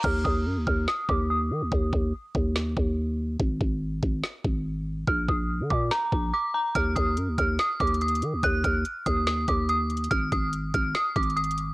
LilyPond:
<<
  \new Staff \with { instrumentName = "Synth bell" } { \time 4/4 \key bes \phrygian \tempo 4 = 143 f'''8 ees'''8 r8 f'''8 ees'''8 d'''8 ees'''4 | r1 | r1 | f'''8 ees'''8 r8 d'''8 bes''4 d'''8 bes''8 |
f'''8 ees'''8 r8 f'''8 ees'''8 d'''8 ees'''4 | ges'''8 f'''8 r8 ees'''8 ees'''8 d'''8 ees'''4 | f'''8 ees'''8 r8 f'''8 ees'''8 d'''8 ees'''4 | }
  \new Staff \with { instrumentName = "808-style bass" } { \clef bass \time 4/4 \key bes \phrygian ees,8 ees,8 ges,16 ees,16 ees,8 r8 ees,4 ees16 ees,16 | ees,8 ees,8 r8 ees,4 ees,4. | aes,,8 aes,,4 aes,,8 r8 aes,,4. | bes,,8 bes,,8. d16 bes,8 r8 bes,,8 r4 |
ees,8 ees,8 ges,16 ees,16 ees,8 r8 ees,4 ees16 ees,16 | ees,8 ees,8 r8 ees,4 ees,4. | aes,,8 aes,,4 aes,,8 r8 aes,,4. | }
  \new DrumStaff \with { instrumentName = "Drums" } \drummode { \time 4/4 <cymc bd>8 bd8 r8 bd8 sn8 bd8 r4 | bd8 bd8 r8 bd8 sn8 bd8 r4 | bd8 bd8 r8 bd8 sn8 bd8 r4 | bd8 bd8 r8 bd8 sn8 bd8 r4 |
<hh bd>8 <hh bd>8 hh8 <hh bd>8 \tuplet 3/2 { <hh sn>16 r16 r16 <hh bd>16 hh16 hh16 hh16 hh16 hh16 hh16 r16 r16 } | <hh bd>8 <hh bd>8 hh8 <hh bd>8 <hh sn>8 <hh bd>8 \tuplet 3/2 { hh16 r16 r16 <hh hho>16 hh16 hh16 } | <hh bd>8 <hh bd>8 hh8 <hh bd>8 \tuplet 3/2 { <hh sn>16 r16 r16 <hh bd>16 hh16 hh16 hh16 hh16 hh16 hh16 r16 r16 } | }
>>